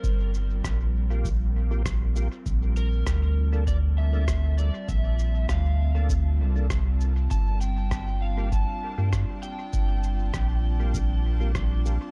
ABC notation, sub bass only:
X:1
M:4/4
L:1/16
Q:1/4=99
K:Gm
V:1 name="Sub bass" clef=bass
G,,,4 B,,,8- B,,,3 z | B,,,4 D,,8- D,,3 z | B,,,4 D,,6 C,,6 | G,,,8- G,,, z2 G,,2 z3 |
G,,,4 B,,,8- B,,,3 z |]